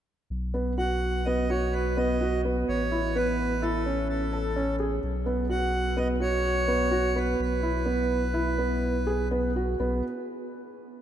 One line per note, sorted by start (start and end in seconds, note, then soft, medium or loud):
0.30 2.64 B1 medium
0.54 0.72 B3 medium
0.78 1.13 F#4 medium
0.78 1.27 F#5 medium
1.26 1.44 B3 medium
1.26 1.50 D#5 medium
1.50 1.85 F#4 medium
1.50 1.74 C#5 medium
1.73 1.98 B4 medium
1.97 2.15 B3 medium
1.97 2.41 D#5 medium
2.21 2.39 F#4 medium
2.45 2.80 B3 medium
2.69 5.00 A1 medium
2.69 3.17 C#5 medium
2.92 3.09 E4 medium
3.15 3.51 B3 medium
3.15 3.64 B4 medium
3.62 3.80 E4 medium
3.62 4.08 A4 medium
3.86 4.21 C#4 soft
4.09 4.76 A4 medium
4.33 4.51 A4 medium
4.56 4.74 C#4 medium
4.80 4.97 G#4 medium
5.03 7.35 B1 medium
5.26 5.44 B3 medium
5.49 5.85 F#4 medium
5.49 5.99 F#5 medium
5.97 6.15 B3 medium
5.97 6.08 D#5 medium
6.20 6.56 F#4 medium
6.20 7.19 C#5 medium
6.68 6.86 B3 medium
6.91 7.09 F#4 medium
7.16 7.51 B3 medium
7.16 7.41 B4 medium
7.40 9.76 B1 medium
7.40 9.28 B4 medium
7.63 7.81 E4 medium
7.86 8.22 B3 medium
8.34 8.52 E4 medium
8.58 8.94 B3 medium
9.07 9.25 G#4 medium
9.31 9.49 B3 medium
9.56 9.74 F#4 medium
9.80 10.02 B1 medium
9.80 10.02 B3 medium